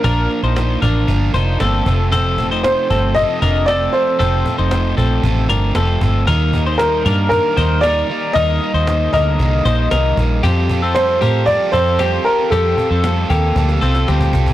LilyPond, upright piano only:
\new Staff \with { instrumentName = "Upright piano" } { \time 4/4 \key f \mixolydian \tempo 4 = 115 bes'8 r2. r8 | r4 c''4 ees''4 d''8 c''8~ | c''8 r2. r8 | r4 bes'4 bes'4 d''4 |
ees''4. ees''2 r8 | r4 c''4 d''8 c''4 bes'8 | a'2. r4 | }